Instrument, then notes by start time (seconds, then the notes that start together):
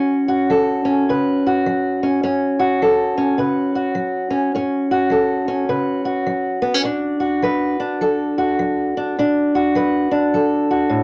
steel-string acoustic guitar
Already playing: F#2 C#4 F#4
0.28 F#4
0.50 F#3 A4
0.85 C#4
1.09 C#3 B4
1.46 F#4
1.66 F#3
2.03 C#4
2.23 F#2 C#4
2.59 F#4
2.82 F#3 A4
3.18 C#4
3.38 C#3 B4
3.75 F#4
3.95 F#3
4.30 C#4
4.55 F#2 C#4
4.91 F#4
5.10 F#3 A4
5.48 C#4
5.69 C#3 B4
6.05 F#4
6.26 F#3
6.62 B3
6.74 C#4
6.84 B2 D4
7.20 F#4
7.42 F#3 B4
7.80 D4
8.01 F#3 A4
8.38 F#4
8.59 F#3
8.97 D4
9.19 B2 D4
9.55 F#4
9.75 F#3 B4
10.11 D4
10.34 F#3 A4
10.71 F#4
10.89 A2